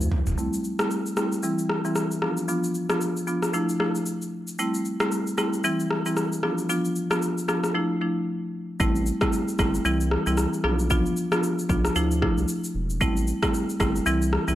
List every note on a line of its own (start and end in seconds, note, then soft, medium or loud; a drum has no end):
0.00 0.09 D2 medium
0.00 shaker medium
0.12 floor tom loud
0.27 0.35 E1 medium
0.27 floor tom loud
0.27 shaker medium
0.38 0.76 G3 medium
0.38 0.76 A3 medium
0.38 0.76 C4 medium
0.38 0.76 E4 medium
0.38 shaker medium
0.53 shaker medium
0.64 shaker medium
0.79 0.98 G3 medium
0.79 0.98 A3 medium
0.79 0.98 C4 medium
0.79 0.98 E4 medium
0.79 cross-stick loud
0.79 shaker soft
0.91 shaker medium
1.06 shaker soft
1.17 1.38 G3 medium
1.17 1.38 A3 medium
1.17 1.38 C4 medium
1.17 1.38 E4 medium
1.17 cross-stick medium
1.17 shaker medium
1.32 shaker medium
1.43 1.81 E3 medium
1.43 1.81 G3 medium
1.43 1.81 C4 medium
1.43 1.81 E4 medium
1.43 shaker medium
1.59 shaker medium
1.69 cross-stick medium
1.85 2.03 E3 medium
1.85 2.04 G3 medium
1.85 2.04 C4 medium
1.85 2.04 E4 medium
1.85 shaker medium
1.96 cross-stick medium
1.96 shaker medium
2.11 shaker medium
2.22 2.43 F3 medium
2.22 2.43 B3 medium
2.22 2.43 D4 medium
2.22 2.43 F4 medium
2.22 cross-stick medium
2.37 shaker soft
2.48 2.86 F3 medium
2.48 2.86 B3 medium
2.48 2.86 D4 medium
2.48 2.87 F4 loud
2.48 shaker medium
2.64 shaker medium
2.74 shaker medium
2.90 3.09 F3 medium
2.90 3.09 B3 medium
2.90 3.09 D4 medium
2.90 3.09 F4 medium
2.90 cross-stick medium
2.90 shaker soft
3.01 shaker medium
3.17 shaker soft
3.27 3.48 F3 medium
3.27 3.48 B3 medium
3.27 3.48 D4 medium
3.27 3.48 F4 medium
3.27 shaker medium
3.43 cross-stick medium
3.43 shaker medium
3.53 3.78 F3 medium
3.53 3.78 A3 medium
3.53 3.78 D4 medium
3.53 3.78 E4 loud
3.53 shaker medium
3.69 shaker medium
3.80 4.01 F3 medium
3.80 4.01 A3 medium
3.80 4.01 D4 medium
3.80 4.01 E4 medium
3.80 cross-stick medium
3.95 shaker medium
4.06 shaker medium
4.22 shaker medium
4.48 shaker medium
4.59 4.97 G3 medium
4.59 4.97 A3 medium
4.59 4.97 C4 medium
4.59 4.97 E4 medium
4.59 shaker medium
4.74 shaker medium
4.85 shaker medium
5.00 5.19 G3 medium
5.00 5.19 A3 medium
5.00 5.19 C4 medium
5.00 5.19 E4 medium
5.00 cross-stick loud
5.00 shaker soft
5.12 shaker medium
5.27 shaker soft
5.38 5.59 G3 medium
5.38 5.59 A3 medium
5.38 5.59 C4 medium
5.38 5.59 E4 medium
5.38 cross-stick medium
5.38 shaker medium
5.53 shaker medium
5.64 6.02 E3 medium
5.64 6.02 G3 medium
5.64 6.02 C4 medium
5.64 6.02 E4 loud
5.64 shaker medium
5.80 shaker medium
5.91 cross-stick medium
6.06 6.24 E3 medium
6.06 6.25 G3 medium
6.06 6.25 C4 medium
6.06 6.25 E4 medium
6.06 shaker medium
6.17 cross-stick medium
6.17 shaker medium
6.32 shaker medium
6.43 6.64 F3 medium
6.43 6.64 B3 medium
6.43 6.64 D4 medium
6.43 6.64 F4 medium
6.43 cross-stick medium
6.58 shaker medium
6.69 7.07 F3 medium
6.69 7.07 B3 medium
6.69 7.07 D4 medium
6.69 7.08 F4 medium
6.69 shaker medium
6.85 shaker medium
6.96 shaker medium
7.11 7.30 F3 medium
7.11 7.30 B3 medium
7.11 7.30 D4 medium
7.11 7.30 F4 medium
7.11 cross-stick loud
7.11 shaker soft
7.22 shaker medium
7.38 shaker soft
7.48 7.69 F3 medium
7.48 7.69 B3 medium
7.48 7.69 D4 medium
7.48 7.69 F4 medium
7.48 cross-stick medium
7.48 shaker medium
7.64 cross-stick medium
7.64 shaker medium
7.75 7.99 F3 medium
7.75 7.99 A3 medium
7.75 7.99 D4 medium
7.75 7.99 E4 loud
8.01 8.22 F3 medium
8.01 8.22 A3 medium
8.01 8.22 D4 medium
8.01 8.22 E4 medium
8.80 9.12 A1 loud
8.80 9.18 G3 medium
8.80 9.18 A3 medium
8.80 9.18 C4 medium
8.80 9.18 E4 loud
8.80 kick loud
8.80 shaker medium
8.95 shaker medium
9.06 shaker medium
9.21 9.40 G3 medium
9.21 9.40 A3 medium
9.21 9.40 C4 medium
9.21 9.40 E4 medium
9.21 kick medium
9.21 cross-stick loud
9.21 shaker soft
9.33 shaker medium
9.48 shaker soft
9.59 9.79 G1 medium
9.59 9.80 G3 medium
9.59 9.80 A3 medium
9.59 9.80 C4 medium
9.59 9.80 E4 medium
9.59 kick loud
9.59 cross-stick loud
9.59 shaker medium
9.74 shaker medium
9.85 10.17 C2 loud
9.85 10.23 E3 medium
9.85 10.23 G3 medium
9.85 10.23 C4 medium
9.85 10.23 E4 loud
9.85 shaker medium
10.01 shaker medium
10.11 cross-stick medium
10.26 10.47 C2 medium
10.26 10.45 E3 medium
10.26 10.45 G3 medium
10.26 10.46 C4 medium
10.26 10.46 E4 medium
10.26 shaker medium
10.37 cross-stick medium
10.37 shaker medium
10.53 shaker medium
10.64 11.04 B1 loud
10.64 10.85 F3 medium
10.64 10.85 B3 medium
10.64 10.85 D4 medium
10.64 10.85 F4 medium
10.64 cross-stick medium
10.79 shaker medium
10.90 11.28 F3 medium
10.90 11.28 B3 medium
10.90 11.28 D4 medium
10.90 11.29 F4 loud
10.90 kick loud
10.90 shaker medium
11.06 shaker medium
11.17 shaker medium
11.32 11.51 F3 medium
11.32 11.51 B3 medium
11.32 11.51 D4 medium
11.32 11.51 F4 medium
11.32 cross-stick loud
11.32 shaker soft
11.43 shaker medium
11.59 shaker medium
11.69 11.90 B1 loud
11.69 11.90 F3 medium
11.69 11.90 B3 medium
11.69 11.90 D4 medium
11.69 11.90 F4 medium
11.69 kick medium
11.69 shaker medium
11.85 cross-stick medium
11.85 shaker medium
11.96 12.28 D2 loud
11.96 12.20 F3 medium
11.96 12.20 A3 medium
11.96 12.20 D4 medium
11.96 12.20 E4 loud
11.96 shaker medium
12.11 shaker medium
12.22 12.43 F3 medium
12.22 12.43 A3 medium
12.22 12.43 D4 medium
12.22 12.43 E4 medium
12.22 kick loud
12.22 cross-stick medium
12.37 12.46 C2 medium
12.37 shaker medium
12.48 shaker medium
12.64 shaker medium
12.75 13.03 E1 medium
12.90 shaker medium
13.01 13.33 A1 loud
13.01 13.39 G3 medium
13.01 13.39 A3 medium
13.01 13.39 C4 medium
13.01 13.39 E4 loud
13.01 kick loud
13.01 shaker medium
13.17 shaker medium
13.27 shaker medium
13.42 13.61 G3 medium
13.42 13.61 A3 medium
13.42 13.61 C4 medium
13.42 13.61 E4 medium
13.42 kick medium
13.42 cross-stick loud
13.42 shaker soft
13.54 shaker medium
13.70 shaker soft
13.80 14.00 G1 medium
13.80 14.01 G3 medium
13.80 14.01 A3 medium
13.80 14.01 C4 medium
13.80 14.01 E4 medium
13.80 kick loud
13.80 cross-stick loud
13.80 shaker medium
13.96 shaker medium
14.06 14.38 C2 loud
14.06 14.44 E3 medium
14.06 14.44 G3 medium
14.06 14.44 C4 medium
14.06 14.44 E4 loud
14.06 shaker medium
14.22 shaker medium
14.33 cross-stick medium
14.48 14.55 C2 medium
14.48 14.55 E3 medium
14.48 14.55 G3 medium
14.48 14.55 C4 medium
14.48 14.55 E4 medium
14.48 shaker medium